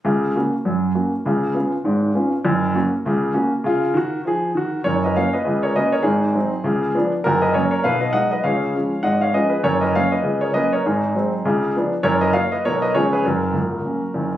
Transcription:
X:1
M:4/4
L:1/8
Q:"Swing" 1/4=200
K:F#
V:1 name="Grand piano"
z8 | z8 | z8 | z8 |
[Ac] [Bd] [ce] [Bd]2 [Ac] [Bd] [Ac] | [DG]6- [DG] z | [FA] [Bd] [Ac] [Ac] [Be] [Bd] [df] [Bd] | [ce]4 [df] [ce] [Bd] [GB] |
[Ac] [Bd] [ce] [Bd]2 [Ac] [Bd] [Ac] | [DG]6- [DG] z | [Ac] [Bd] [ce] [Bd] [Ac] [Bd] [Gc] [GB] | [FA]6- [FA] z |]
V:2 name="Grand piano" clef=bass
[C,,C,]2 [A,CF]2 [F,,F,]2 [A,CF]2 | [C,,C,]2 [B,CE]2 [G,,,G,,]2 [B,CE]2 | [F,,,F,,]2 [A,CF]2 [C,,C,]2 [A,CF]2 | [C,E]2 [D,F]2 [E,G]2 [D,F]2 |
[F,,,F,,]2 [A,CF]2 [C,,C,]2 [A,CF]2 | [G,,,G,,]2 [F,^B,D]2 [C,,C,]2 [E,=B,=D]2 | [F,,,F,,]2 [F,A,C]2 [B,,,B,,]2 [F,G,D]2 | [C,,C,]2 [E,G,C]2 [G,,,G,,]2 [E,G,C]2 |
[F,,,F,,]2 [F,A,C]2 [C,,C,]2 [F,A,C]2 | [G,,,G,,]2 [F,G,^B,]2 [C,,C,]2 [E,=B,=D]2 | [F,,,F,,]2 [F,A,F]2 [B,,,B,,F,B,F]2 [C,,C,E,B,C]2 | [F,,,F,,]2 [C,,,C,,]2 [F,A,C]2 [F,,,F,,]2 |]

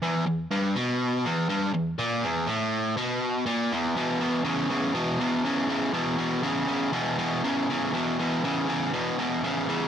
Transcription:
X:1
M:4/4
L:1/8
Q:1/4=121
K:Em
V:1 name="Overdriven electric guitar" clef=bass
E,, E,, G,, B,,2 E,, G,, E,, | ^A,, E,, =A,,2 B,,2 ^A,, E,, | [E,,B,,] [E,,B,,] [E,,^C,] [E,,C,] [E,,B,,] [E,,B,,] [E,,C,] [E,,C,] | [E,,B,,] [E,,B,,] [E,,^C,] [E,,C,] [E,,B,,] [E,,B,,] [E,,C,] [E,,C,] |
[E,,B,,] [E,,B,,] [E,,^C,] [E,,C,] [E,,B,,] [E,,B,,] [E,,C,] [E,,C,] |]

